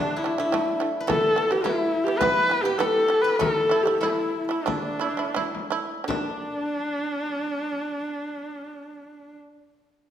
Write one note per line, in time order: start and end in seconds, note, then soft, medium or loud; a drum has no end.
0.00 0.19 D3 medium
0.00 0.20 A3 medium
0.00 0.19 D4 medium
0.00 2.76 D4 medium
0.00 0.16 E4 medium
0.00 1.21 G4 medium
0.16 0.39 E4 medium
0.16 0.35 E4 medium
0.24 0.36 D3 medium
0.24 0.36 A3 medium
0.38 0.50 D3 medium
0.38 0.50 A3 medium
0.38 1.64 E4 medium
0.38 frame drum soft
0.42 0.80 E4 medium
0.52 0.75 D3 medium
0.52 0.76 A3 loud
0.52 frame drum medium
0.80 1.03 D3 medium
0.80 1.03 A3 medium
1.00 2.20 B4 medium
1.07 1.31 E3 loud
1.07 1.32 B3 loud
1.07 2.79 A4 medium
1.07 1.53 A4 loud
1.07 frame drum medium
1.36 1.48 E3 medium
1.36 1.48 B3 medium
1.51 1.62 E3 medium
1.51 1.63 B3 medium
1.51 1.65 G4 loud
1.51 frame drum soft
1.63 1.98 E3 medium
1.63 1.99 B3 medium
1.63 2.06 E4 loud
1.63 4.00 E4 medium
1.63 frame drum medium
1.94 frame drum soft
2.04 2.18 E3 medium
2.04 2.19 B3 medium
2.04 2.19 G4 loud
2.18 2.44 E3 medium
2.18 2.64 B4 loud
2.18 3.24 B4 medium
2.18 frame drum medium
2.22 2.45 B3 loud
2.49 2.62 E3 medium
2.49 2.63 B3 medium
2.63 2.76 E3 medium
2.63 2.77 B3 medium
2.63 2.79 G4 loud
2.63 5.01 G4 medium
2.63 frame drum soft
2.77 3.03 E3 loud
2.77 3.04 B3 loud
2.77 3.23 A4 loud
2.77 3.39 A4 medium
2.77 frame drum medium
3.08 3.33 E3 medium
3.08 3.34 B3 medium
3.22 3.37 B4 medium
3.22 5.29 B4 medium
3.36 3.64 A3 medium
3.36 5.59 A4 medium
3.36 3.54 A#4 loud
3.41 3.65 E4 loud
3.41 frame drum medium
3.54 3.84 A4 loud
3.69 3.83 A3 medium
3.69 3.84 E4 medium
3.82 3.99 A3 medium
3.82 3.99 G4 medium
3.87 3.99 E4 medium
3.87 frame drum soft
3.97 4.40 A3 medium
3.97 4.47 E4 medium
3.97 6.61 E4 medium
4.03 4.41 E4 medium
4.03 frame drum medium
4.35 frame drum soft
4.48 4.63 A3 medium
4.48 4.67 E4 medium
4.48 4.64 E4 medium
4.65 4.93 A3 medium
4.65 5.70 D4 medium
4.65 6.07 D4 medium
4.65 4.94 E4 loud
4.65 frame drum medium
4.99 5.14 A3 medium
4.99 5.15 E4 medium
5.17 5.32 A3 medium
5.17 5.32 E4 medium
5.17 frame drum soft
5.34 5.63 A3 medium
5.34 5.64 E4 medium
5.34 frame drum medium
5.55 frame drum soft
5.70 6.00 A3 medium
5.70 6.01 E4 medium
6.04 9.34 D3 medium
6.04 9.37 D4 medium
6.04 9.38 D4 medium
6.09 9.40 A3 medium
6.09 frame drum medium